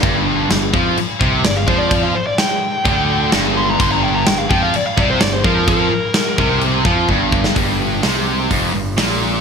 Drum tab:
CC |x---x---x---x---|x---x---x---x---|x---x---x---x---|x---x---x-------|
HH |----------------|----------------|----------------|----------------|
SD |----o-------o---|----o-------o---|----o-------o---|----o----------o|
BD |o-----o---o---o-|o-------o-------|o-----o---o---o-|o-----o---o-o-o-|

CC |----------------|
HH |o---o---o---o---|
SD |----o-------o---|
BD |o-------o-------|